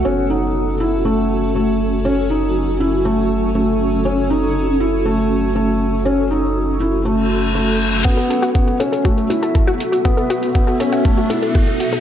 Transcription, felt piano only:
X:1
M:4/4
L:1/8
Q:1/4=120
K:F#dor
V:1 name="Felt piano"
C D2 E A,2 A,2 | C D2 E A,2 A,2 | C D2 E A,2 A,2 | C D2 E A,2 A,2 |
B,2 B, C A, E2 z | B,2 B, C A, E2 z |]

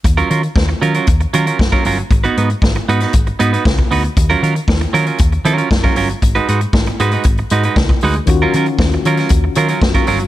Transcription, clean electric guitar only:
X:1
M:4/4
L:1/16
Q:1/4=117
K:Ebm
V:1 name="Clean electric guitar"
z [G,DFB] [G,DFB] z3 [G,DFB] [G,DFB] z2 [G,DFB] [G,DFB] z [G,DFB] [G,DFB] z | z [CEGc] [CEGc] z3 [CEGc] [CEGc] z2 [CEGc] [CEGc] z2 [CEGc] z | z [G,DFB] [G,DFB] z3 [G,DFB] [G,DFB] z2 [G,DFB] [G,DFB] z [G,DFB] [G,DFB] z | z [A,EGc] [A,EGc] z3 [A,EGc] [A,EGc] z2 [A,EGc] [A,EGc] z2 [A,EGc] z |
z [G,DFB] [G,DFB] z3 [G,DFB] [G,DFB] z2 [G,DFB] [G,DFB] z [G,DFB] [G,DFB] z |]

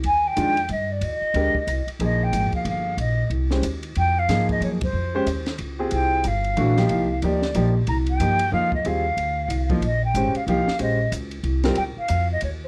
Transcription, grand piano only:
X:1
M:3/4
L:1/8
Q:"Swing" 1/4=184
K:Cm
V:1 name="Grand piano"
z2 [E,A,DF] z3 | z2 [A,DGB] z3 | [F,B,EA]4- [F,B,EA] z | z3 [A,_DGc] z2 |
z2 [F,B,EA]3 z | z [A,_DGc] z3 [CFGA]- | [CFGA]2 z2 [=E,=A,D^F] [=F,B,_EG]- | [F,B,EG] z [F,B,EG] z [F,B,EG] z |
z2 [F,B,EG] z [F,B,EF] z | [G,CFA] z4 [F,B,EF] | z2 [A,_DGc] z [F,B,EG] z | [A,_DGc] z4 [G,CFB] |
z6 |]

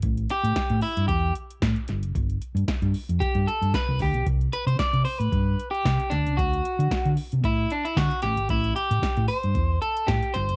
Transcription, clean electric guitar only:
X:1
M:4/4
L:1/16
Q:1/4=114
K:Ador
V:1 name="Clean electric guitar"
z2 G4 E2 G2 z6 | z8 G2 A2 B2 G2 | z2 B c d2 c B4 G3 D2 | F6 z2 E2 D E F2 G2 |
E2 G4 c4 A2 G2 c2 |]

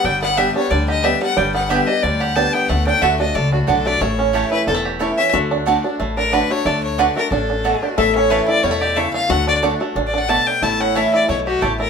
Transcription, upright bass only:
X:1
M:4/4
L:1/8
Q:"Swing" 1/4=181
K:D
V:1 name="Upright bass" clef=bass
G,,,4 D,,4 | G,,,4 D,,4 | D,,2 D,,2 C,,2 B,,,2 | A,,,4 E,,,4 |
D,,4 A,,,4 | D,,4 A,,,4 | A,,,4 E,,4 | D,,4 A,,,4 |
A,,,4 B,,,2 A,,,2 |]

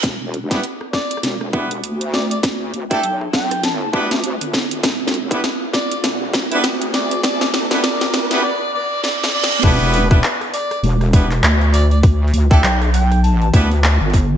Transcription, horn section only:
X:1
M:4/4
L:1/16
Q:"Swing 16ths" 1/4=100
K:Em
V:1 name="Horn section"
z3 [B,DEGB] z6 [B,DEGB] z4 z | z3 [A,DEGA] z6 [B,DEGB] z4 z | z3 [B,DEGB] z6 z [B,DEGB] z4 | z3 [B,DEGB] z3 [B,DEGB] z8 |
[B,DEGB]3 [B,DEGB] z6 [B,DEGB] z4 z | z3 [A,DEGA] z6 [B,DEGB] z4 z |]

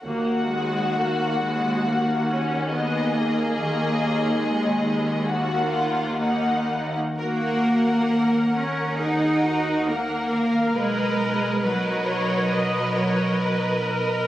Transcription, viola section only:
X:1
M:4/4
L:1/8
Q:1/4=68
K:Ebm
V:1 name="Viola section"
B, A, B, A, B, D C B,- | B,2 A,2 B,2 B,2 | G2 B2 A G B B- | B2 =B d ^d _d B ^A |]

